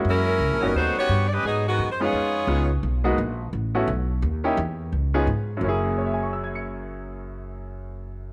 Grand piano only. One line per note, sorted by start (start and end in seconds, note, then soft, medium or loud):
0.00 0.37 G#3 medium
0.00 0.37 A#3 medium
0.00 0.37 C#4 medium
0.00 0.37 E4 medium
0.00 0.37 F#4 medium
0.62 1.07 G3 medium
0.62 1.07 B3 soft
0.62 1.07 C#4 medium
0.62 1.07 D#4 medium
0.62 1.07 F#4 medium
2.00 2.46 G#3 medium
2.00 2.46 B3 medium
2.00 2.46 C#4 medium
2.00 2.46 D#4 medium
2.00 2.46 F4 medium
2.47 2.67 G#3 medium
2.47 2.67 B3 soft
2.47 2.68 C#4 medium
2.47 2.68 D#4 soft
2.47 2.68 F4 medium
3.04 3.16 G#3 medium
3.04 3.16 A#3 medium
3.04 3.16 B3 medium
3.04 3.17 D#4 medium
3.04 3.17 F#4 medium
3.75 3.86 A3 medium
3.75 3.86 B3 medium
3.75 3.87 C#4 medium
3.75 3.87 E4 medium
3.75 3.87 F#4 medium
4.44 4.56 A#3 medium
4.44 4.56 C#4 medium
4.44 4.56 D#4 medium
4.44 4.56 E4 medium
4.44 4.56 G4 medium
5.14 5.26 B3 medium
5.14 5.26 C#4 medium
5.14 5.26 D#4 medium
5.14 5.26 F4 medium
5.14 5.26 G#4 medium
5.57 8.33 F#2 medium
5.57 8.33 F#3 medium
5.61 8.33 A#3 medium
5.61 8.33 C#4 medium
5.66 8.33 E4 medium
5.66 8.33 G#4 medium
5.98 8.33 C#5 soft
6.06 8.33 E5 soft
6.14 8.33 G#5 soft
6.23 8.33 C#6 soft
6.33 8.33 E6 soft
6.44 8.33 G#6 soft
6.55 8.33 C#7 soft